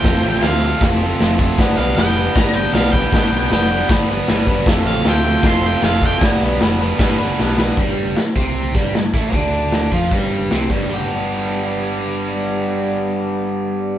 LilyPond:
<<
  \new Staff \with { instrumentName = "Lead electric guitar" } { \time 4/4 \key g \mixolydian \tempo 4 = 155 g''4 f''4 r2 | r8 f''8 g''4 bes''8 g''8 f''8 g''8~ | g''4 g''4 r2 | r8 f''8 g''4 c'''8 g''8 f''8 g''8 |
r1 | r1 | r1 | r1 |
r1 | }
  \new Staff \with { instrumentName = "Overdriven electric guitar" } { \time 4/4 \key g \mixolydian <f a c' f' a'>8 <c' f' a'>8 <a c' f' a'>8 <f a c' f' a'>8 <a c' f' a'>8 <f a c' f' a'>8 <a c' f' a'>8 <c' f' a'>8 | <g b d' b'>8 <b d' b'>8 <g b d' b'>8 <g b d' b'>8 <g b d' b'>8 <g b d' b'>8 <g b d' b'>8 <b d' b'>8 | <g b d' b'>8 <b d' b'>8 <g b d' b'>8 <g b d' b'>8 <g b d' b'>8 <g b d' b'>8 <g b d' b'>8 <b d' b'>8 | <f a c' f' a'>8 <c' f' a'>8 <a c' f' a'>8 <f a c' f' a'>8 <a c' f' a'>8 <f a c' f' a'>8 <a c' f' a'>8 <c' f' a'>8 |
<g b d' b'>8 <b d' b'>8 <g b d' b'>8 <g b d' b'>8 <g b d' b'>8 <g b d' b'>8 <g b d' b'>8 <b d' b'>8 | <g, g>4 r8 <c c'>4 <g, g>8 g,8 <a, a>8 | <d d'>4. <f f'>8 <g, g>4 <c c'>8 <g, g>8 | <g b d' g'>1~ |
<g b d' g'>1 | }
  \new Staff \with { instrumentName = "Picked electric bass" } { \clef bass \time 4/4 \key g \mixolydian f,,8 a,,8 d,4 f,,4 f,,4 | g,,8 b,,8 f,,4 g,,4 b,,4 | g,,8 b,,8 f,,4 g,,4 g,,4 | f,,8 a,,8 d,4 f,,4 f,,4 |
g,,8 b,,8 f,,4 g,,4 b,,4 | g,,4 r8 c,4 g,,8 g,,8 a,,8 | d,4. f,8 g,,4 c,8 g,,8 | g,,1~ |
g,,1 | }
  \new DrumStaff \with { instrumentName = "Drums" } \drummode { \time 4/4 <cymc bd sn>4 <cymc sn>4 <cymc bd sn>4 <cymc sn>8 bd8 | <cymc bd sn>4 <cymc sn>4 <cymc bd sn>4 <cymc sn>8 bd8 | <cymc bd sn>4 <cymc sn>4 <cymc bd sn>4 <cymc sn>8 bd8 | <cymc bd sn>4 <cymc sn>4 <cymc bd sn>4 <cymc sn>8 bd8 |
<cymc bd sn>4 <cymc sn>4 <cymc bd sn>4 sn8 sn8 | <hho bd>4 <hho sn>8 bd8 hho8 bd8 <hho sn>8 bd8 | <hho bd>4 <hho sn>8 bd8 <hho bd>4 <hho sn>8 bd8 | r4 r4 r4 r4 |
r4 r4 r4 r4 | }
>>